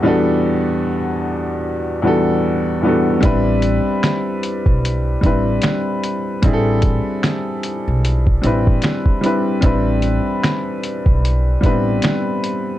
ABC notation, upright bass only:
X:1
M:4/4
L:1/16
Q:"Swing 16ths" 1/4=75
K:Am
V:1 name="Upright bass" clef=bass
z16 | A,,,3 z4 B,,,3 A,,,2 z4 | A,,,3 z4 B,,,3 A,,,2 z4 | A,,,3 z4 B,,,3 A,,,2 z4 |]